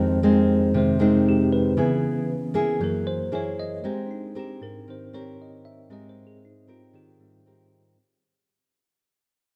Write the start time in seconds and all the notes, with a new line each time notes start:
Already playing: F2 D#3 G#3 C4 G4 C5
0.23 D#3 G#3 C4
0.74 F2 C3 D#3 G#3 C5
0.99 D#3 G#3 C4 D#4
1.29 G4
1.53 B4
1.77 C#3 E3 B3 E4 G#4
2.54 A#3 E4 G#4
2.80 F#2 E3 F#3 A#3 A#4
3.07 C5
3.32 A#3 E4 G#4 C#5
3.60 D#5
3.84 G#3 C4 G4 A#4 C5
4.06 D4
4.11 D#4
4.35 C4 G4 A#4
4.61 G#2 C4 A#4
4.88 D#3 C5
5.13 C4 G4 A#4 C#5
5.42 D#5
5.65 E5
5.89 G#2 G#3 C4 G4 A#4 D#5
6.09 C5
6.27 G#4
6.45 D#4
6.67 C4 F4 G4 A#4
6.93 D#3 G4
7.19 G#2 G3 C4
7.46 C4 G4 A#4